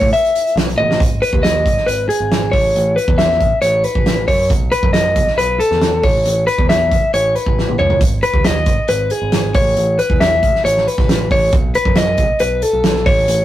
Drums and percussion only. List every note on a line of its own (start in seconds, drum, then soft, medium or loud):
0.02 kick medium
0.13 closed hi-hat medium
0.24 closed hi-hat soft
0.35 closed hi-hat medium
0.47 closed hi-hat soft
0.57 snare medium
0.57 closed hi-hat medium
0.69 closed hi-hat soft
0.80 high tom medium
0.91 snare medium
1.00 kick loud
1.00 closed hi-hat medium
1.23 closed hi-hat medium
1.33 kick medium
1.44 snare loud
1.44 closed hi-hat medium
1.66 kick medium
1.66 closed hi-hat medium
1.77 snare soft
1.88 closed hi-hat medium
2.10 closed hi-hat medium
2.32 snare medium
2.32 closed hi-hat medium
2.53 kick medium
2.53 open hi-hat medium
2.76 closed hi-hat medium
2.98 closed hi-hat medium
3.08 kick medium
3.19 snare loud
3.19 closed hi-hat medium
3.30 snare soft
3.40 kick medium
3.40 closed hi-hat medium
3.62 closed hi-hat medium
3.84 closed hi-hat medium
3.95 kick medium
4.06 snare medium
4.06 closed hi-hat medium
4.28 kick medium
4.28 open hi-hat medium
4.50 kick loud
4.50 closed hi-hat medium
4.72 closed hi-hat medium
4.83 kick medium
4.94 snare loud
4.94 closed hi-hat medium
5.16 kick medium
5.16 closed hi-hat medium
5.27 snare soft
5.38 closed hi-hat medium
5.60 closed hi-hat medium
5.71 snare soft
5.81 snare medium
5.81 closed hi-hat medium
6.03 kick loud
6.03 open hi-hat medium
6.25 closed hi-hat medium
6.48 closed hi-hat medium
6.59 kick medium
6.70 snare loud
6.70 closed hi-hat medium
6.92 kick medium
6.92 closed hi-hat medium
7.14 closed hi-hat medium
7.36 closed hi-hat medium
7.46 kick medium
7.58 snare soft
7.69 high tom medium
7.79 mid tom medium
7.90 floor tom medium
8.01 kick loud
8.01 closed hi-hat medium
8.23 closed hi-hat medium
8.34 kick medium
8.44 snare loud
8.44 closed hi-hat medium
8.66 kick medium
8.66 closed hi-hat medium
8.88 closed hi-hat medium
9.10 closed hi-hat medium
9.32 snare medium
9.32 closed hi-hat medium
9.54 kick loud
9.54 open hi-hat medium
9.77 closed hi-hat medium
9.99 closed hi-hat medium
10.10 kick medium
10.21 snare loud
10.21 closed hi-hat medium
10.43 kick medium
10.43 closed hi-hat medium
10.55 snare soft
10.66 closed hi-hat medium
10.77 snare soft
10.88 closed hi-hat medium
10.98 kick medium
10.98 snare soft
11.09 snare loud
11.09 closed hi-hat medium
11.31 kick medium
11.31 open hi-hat medium
11.53 kick loud
11.53 closed hi-hat medium
11.75 closed hi-hat medium
11.85 kick medium
11.96 snare loud
11.96 closed hi-hat medium
12.17 kick medium
12.17 closed hi-hat medium
12.39 closed hi-hat medium
12.62 closed hi-hat medium
12.84 snare loud
12.84 closed hi-hat medium
12.95 snare soft
13.06 kick loud
13.06 open hi-hat medium
13.28 closed hi-hat medium